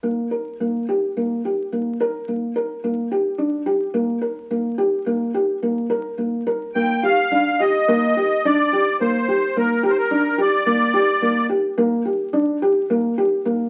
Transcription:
<<
  \new Staff \with { instrumentName = "Accordion" } { \time 7/8 \key bes \mixolydian \tempo 4 = 108 r2. r8 | r2. r8 | r2. r8 | r4. g''8 f''4 ees''8~ |
ees''4 d''4 c''4 bes'8 | bes'32 c''32 bes'8. d''2 r8 | r2. r8 | }
  \new Staff \with { instrumentName = "Felt piano" } { \time 7/8 \key bes \mixolydian bes8 bes'8 bes8 g'8 bes8 g'8 bes8 | bes'8 bes8 bes'8 bes8 g'8 d'8 g'8 | bes8 bes'8 bes8 g'8 bes8 g'8 bes8 | bes'8 bes8 bes'8 bes8 g'8 d'8 g'8 |
bes8 g'8 d'8 g'8 bes8 g'8 bes8 | g'8 d'8 g'8 bes8 g'8 bes8 g'8 | bes8 g'8 d'8 g'8 bes8 g'8 bes8 | }
>>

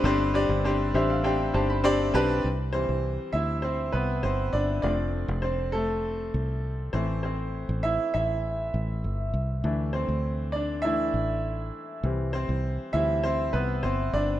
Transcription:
<<
  \new Staff \with { instrumentName = "Upright piano" } { \time 4/4 \key c \major \tempo 4 = 100 << { r4. e''16 f''16 g''8 a''16 b''16 c'''8 a''8 | r8 c''4 <e' e''>8 <c' c''>8 <b b'>8 <c' c''>8 <d' d''>8 | <d' d''>4 <c' c''>8 <a a'>2 c''8 | <c' c''>4 <e' e''>8 <e' e''>2 r8 |
r8 <c' c''>4 <d' d''>8 <e' e''>4. r8 | r8 <c' c''>4 <e' e''>8 <c' c''>8 <b b'>8 <c' c''>8 <d' d''>8 | } \\ { <c' d' g' c''>8 <c' d' g' d''>8 <c' d' g' c''>8 <c' d' g' c''>8 <c' d' g' c''>8 <c' d' g' c''>8 <c' d' g' d''>8 <c' d' g' b'>8 | r1 | r1 | r1 |
r1 | r1 | } >> }
  \new Staff \with { instrumentName = "Upright piano" } { \clef bass \time 4/4 \key c \major g,4. r2 r8 | r8 <e g c'>2.~ <e g c'>8 | <f a c'>8 r2. <e a c'>8~ | <e a c'>4 r2. |
<e a d'>4. r8 <e a d'>8 r4. | <e g c'>4. <e g c'>8 r2 | }
  \new Staff \with { instrumentName = "Fingered electric bass" } { \clef bass \time 4/4 \key c \major g,,8. g,,8. a,,4 g,,4 b,,8 | c,8. c,8 r16 d,4 c,8 g,,8 g,,8 | f,,8. f,,4.~ f,,16 c,4 a,,8~ | a,,8. a,,8 r16 a,,4 a,,8 g,,8 c,8 |
d,8. d,4.~ d,16 a,,4 r8 | c,8. c,8 r16 d,4 c,8 g,,8 g,,8 | }
>>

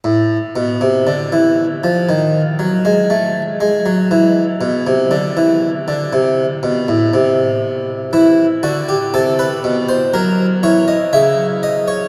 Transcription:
\new Staff \with { instrumentName = "Harpsichord" } { \clef bass \time 4/4 \key e \phrygian \tempo 4 = 60 << { a,8 b,16 c16 d16 e8 f16 dis8 fis16 gis16 a8 gis16 fis16 | e8 b,16 c16 d16 e8 d16 c8 b,16 a,16 c4 | e'8 fis'16 g'16 a'16 b'8 c''16 ais'8 cis''16 dis''16 e''8 dis''16 cis''16 | } \\ { r1 | r1 | e8 d8 c8 b,8 fis8 e8 cis4 | } >> }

